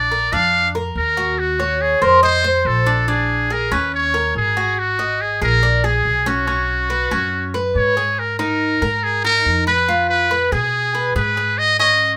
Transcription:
Already playing: A#1 D5
0.11 A#4
0.32 F2 D4 F5
0.75 A#4
0.95 D#2 A#4
1.17 F#4
1.39 F#4
1.60 C#5
1.82 G#4
2.02 F2 A#4 C5
2.23 C5 D#5
2.44 C5
2.65 A#1 A4
2.86 D4
3.08 D4 G#4
3.50 G#4 A#4
3.71 D#2 C#4 B4
3.94 C#5
4.14 A#4
4.35 G#1 G#4
4.57 F#4
4.79 F#4
4.99 D#5
5.21 G#4
5.41 A#1 G#4 A#4
5.63 D5
5.84 G#4
6.05 B1
6.26 C#4 F#4
6.47 C#4
6.90 B4
7.11 F#2 C#4
7.54 B4
7.75 G#2 C#5
7.97 G#4
8.19 A#4
8.39 D#4 A#4
8.82 G#2 A#4
9.04 G#4
9.25 D#4 A#4
9.46 F2
9.67 B4
9.88 F4
10.09 B4
10.31 B4
10.52 B2 G#4
10.95 B4
11.15 G#2 G#4 B4
11.37 G#4
11.58 D#5
11.79 C#4 D#5

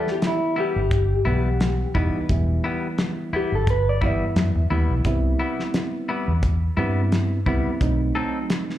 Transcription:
Already playing: E3 G3 B3 E4
0.07 snare
0.12 G4
0.22 snare, closed hi-hat
0.27 E4
0.56 G3 B3 E4 G4
0.76 G1
0.91 kick, closed hi-hat
1.25 B1 E3 G3 B3 E4 F#5
1.60 snare, closed hi-hat
1.95 E1 E3 G3 B3 D#4 E4, kick
2.14 muted fingered electric bass stroke
2.29 E1 E3 G3 B3 E4, kick, closed hi-hat
2.64 G3 B3 E4
2.98 snare, closed hi-hat
3.33 G3 B3 E4 G4, muted fingered electric bass stroke
3.52 G1 A4
3.67 B4, kick, closed hi-hat
3.89 D5
4.01 E3 G3 B3 E4, kick
4.05 E5
4.36 F#2, snare, closed hi-hat
4.55 E2
4.70 D#2 E3 G3 B3 E4
4.90 B1
5.04 C2 G3 B3 C4 E4, kick, closed hi-hat
5.39 G3 B3 E4
5.59 snare
5.74 snare, closed hi-hat
6.09 G3 B3 E4
6.28 E2
6.43 kick, closed hi-hat
6.77 G2 G3 B3 C4 E4
7.12 snare, closed hi-hat
7.46 C2 G3 B3 C4 E4, kick
7.66 muted fingered electric bass stroke
7.81 B1 F#3 A3 C4 D#4, kick, closed hi-hat
8.15 F#3 C4 D#4 A4
8.50 snare, closed hi-hat
8.70 snare

